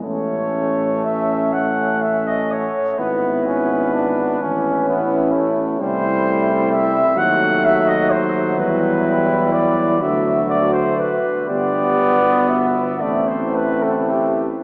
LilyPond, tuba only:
\new Staff \with { instrumentName = "Tuba" } { \clef bass \time 6/8 \key a \lydian \tempo 4. = 41 a,,2~ a,,8 r8 | gis,,4. a,,4. | \key a \dorian c,4. dis,4. | e,4. d,4. |
g,,4. a,,4. | }